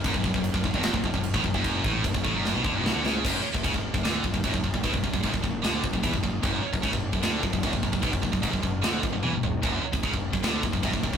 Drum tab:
CC |x---x---x---x---|x---x-----------|x---x---x---x---|x---x---x---x---|
SD |--------o-------|--------o---o-o-|--------o-------|--------o-------|
T1 |----------------|----------------|----------------|----------------|
FT |----------------|----------------|----------------|----------------|
BD |oooo-ooo-ooo-ooo|o-o-ooo---o-----|o--ooo-o--oooooo|ooooooo---ooooo-|

CC |x---x---x---x---|x---x---x-------|x---x---x---x---|
SD |--------o-------|--------o-------|--------o-------|
T1 |----------------|------------o---|----------------|
FT |----------------|--------------o-|----------------|
BD |o--ooo-o--oooooo|ooooooo---o-----|o--ooo-o--oooooo|